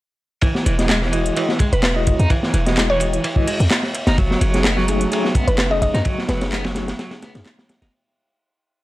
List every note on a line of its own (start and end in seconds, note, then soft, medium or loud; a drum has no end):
0.42 0.65 E3 medium
0.42 kick loud
0.42 closed hi-hat soft
0.42 ride loud
0.55 snare medium
0.66 1.31 E1 loud
0.66 0.89 E3 medium
0.66 closed hi-hat medium
0.66 ride medium
0.79 0.92 G#3 medium
0.79 0.92 E4 medium
0.79 0.92 F#4 medium
0.79 0.92 D#5 medium
0.79 snare soft
0.79 closed hi-hat soft
0.89 1.01 G#3 loud
0.89 snare loud
0.89 clap loud
0.89 closed hi-hat soft
0.89 ride loud
1.02 1.36 E3 loud
1.02 snare soft
1.13 1.34 G#3 medium
1.13 1.34 E4 medium
1.13 1.34 F#4 medium
1.13 1.34 D#5 loud
1.13 closed hi-hat medium
1.13 ride medium
1.26 closed hi-hat soft
1.37 1.59 E3 medium
1.37 1.51 G#3 medium
1.37 1.51 E4 medium
1.37 1.51 F#4 medium
1.37 1.51 D#5 medium
1.37 closed hi-hat soft
1.37 ride medium
1.49 snare soft
1.59 1.70 G#3 medium
1.59 kick loud
1.59 closed hi-hat medium
1.59 ride medium
1.73 2.13 E1 loud
1.73 1.80 B4 medium
1.73 closed hi-hat soft
1.83 1.92 B4 medium
1.83 snare loud
1.83 clap loud
1.83 closed hi-hat soft
1.83 ride medium
1.96 2.18 G#3 loud
1.96 2.18 E4 medium
1.96 2.18 F#4 medium
1.96 2.18 D#5 loud
2.07 kick loud
2.07 closed hi-hat medium
2.07 ride medium
2.19 2.27 E2 medium
2.19 2.28 D#4 medium
2.19 closed hi-hat soft
2.30 2.53 E3 medium
2.30 kick loud
2.30 closed hi-hat soft
2.30 ride medium
2.43 snare medium
2.54 3.18 E1 loud
2.54 2.76 E3 medium
2.54 closed hi-hat medium
2.54 ride medium
2.66 2.89 G#3 loud
2.66 2.89 E4 medium
2.66 2.89 F#4 medium
2.66 2.89 D#5 loud
2.66 snare medium
2.66 closed hi-hat soft
2.76 2.89 G#3 loud
2.76 snare loud
2.76 clap loud
2.76 closed hi-hat soft
2.76 ride medium
2.90 3.23 E3 loud
2.90 3.24 C#5 medium
3.00 3.15 G#3 medium
3.00 3.15 E4 medium
3.00 3.15 F#4 medium
3.00 3.15 D#5 medium
3.00 closed hi-hat medium
3.00 ride medium
3.13 closed hi-hat soft
3.24 3.46 E3 medium
3.24 closed hi-hat soft
3.24 ride medium
3.36 3.59 G#3 medium
3.36 3.59 E4 medium
3.36 3.59 F#4 medium
3.36 3.59 D#5 medium
3.36 kick medium
3.47 3.58 G#3 medium
3.47 closed hi-hat medium
3.47 open hi-hat medium
3.60 3.67 E2 medium
3.60 closed hi-hat soft
3.71 snare loud
3.71 clap loud
3.71 closed hi-hat soft
3.71 ride medium
3.83 snare soft
3.94 closed hi-hat medium
3.94 ride medium
4.07 4.35 F#1 loud
4.07 4.16 D#4 medium
4.07 snare loud
4.07 closed hi-hat soft
4.07 ride medium
4.18 7.89 C#3 medium
4.18 4.40 F#3 medium
4.18 7.89 F#3 medium
4.18 7.89 G#3 medium
4.18 7.89 A3 medium
4.18 7.89 D#4 medium
4.18 kick loud
4.18 closed hi-hat soft
4.18 ride medium
4.31 snare medium
4.41 5.06 F#1 loud
4.41 4.64 F#3 medium
4.41 closed hi-hat medium
4.41 ride medium
4.54 4.67 A3 medium
4.54 4.67 C#4 medium
4.54 4.67 D#4 medium
4.54 4.67 G#4 medium
4.54 snare soft
4.54 closed hi-hat soft
4.64 4.76 B3 loud
4.64 snare loud
4.64 clap loud
4.64 closed hi-hat soft
4.64 ride medium
4.77 5.10 F#3 loud
4.77 snare soft
4.88 5.09 A3 medium
4.88 5.09 C#4 medium
4.88 5.09 D#4 medium
4.88 5.09 G#4 loud
4.88 closed hi-hat medium
4.88 ride medium
5.01 closed hi-hat soft
5.11 5.34 F#3 medium
5.11 5.26 A3 medium
5.11 5.26 C#4 medium
5.11 5.26 D#4 medium
5.11 5.26 G#4 medium
5.11 closed hi-hat soft
5.11 ride loud
5.25 snare soft
5.35 5.45 B3 medium
5.35 kick medium
5.35 closed hi-hat medium
5.35 ride medium
5.47 5.88 F#1 loud
5.47 5.54 B4 medium
5.47 closed hi-hat soft
5.58 5.67 B4 medium
5.58 snare loud
5.58 clap loud
5.58 closed hi-hat soft
5.58 ride medium
5.71 5.93 A3 loud
5.71 5.93 C#4 medium
5.71 5.93 D#4 medium
5.71 5.93 G#4 loud
5.71 5.78 D#5 medium
5.82 5.90 D#5 medium
5.82 kick medium
5.82 closed hi-hat medium
5.82 ride medium
5.94 6.02 F#2 loud
5.94 6.03 D#4 medium
5.94 snare medium
5.94 closed hi-hat soft
6.05 6.28 F#3 medium
6.05 kick loud
6.05 closed hi-hat soft
6.05 ride medium
6.18 snare soft
6.28 6.93 F#1 loud
6.28 6.51 F#3 medium
6.28 6.76 B4 medium
6.28 snare loud
6.28 closed hi-hat medium
6.28 ride medium
6.41 6.64 A3 loud
6.41 6.64 C#4 medium
6.41 6.64 D#4 medium
6.41 6.64 G#4 loud
6.41 snare loud
6.41 closed hi-hat soft
6.41 ride medium
6.52 6.64 B3 loud
6.52 snare loud
6.52 clap loud
6.52 closed hi-hat soft
6.52 ride medium
6.64 6.98 F#3 loud
6.64 snare loud
6.64 ride medium
6.75 6.90 A3 medium
6.75 6.90 C#4 medium
6.75 6.90 D#4 medium
6.75 6.90 G#4 medium
6.75 snare loud
6.75 closed hi-hat medium
6.75 ride medium
6.88 snare loud
6.88 closed hi-hat soft
6.88 ride medium
6.99 7.21 F#3 medium
6.99 snare loud
6.99 closed hi-hat soft
6.99 ride medium
7.11 7.33 A3 medium
7.11 7.33 C#4 medium
7.11 7.33 D#4 medium
7.11 7.33 G#4 medium
7.11 snare medium
7.11 ride medium
7.22 7.33 B3 medium
7.22 snare loud
7.22 closed hi-hat medium
7.22 ride medium
7.35 7.42 F#2 medium
7.35 7.48 A3 medium
7.35 7.48 C#4 medium
7.35 7.48 D#4 medium
7.35 7.48 G#4 medium
7.35 snare loud
7.35 closed hi-hat soft
7.35 ride medium
7.45 snare loud
7.45 clap loud
7.45 closed hi-hat soft
7.45 ride medium
7.59 snare loud
7.59 ride medium
7.69 snare loud
7.69 closed hi-hat medium
7.69 ride medium
7.82 7.89 F#1 loud
7.82 7.91 D#4 medium
7.82 snare loud
7.82 closed hi-hat soft
7.82 ride medium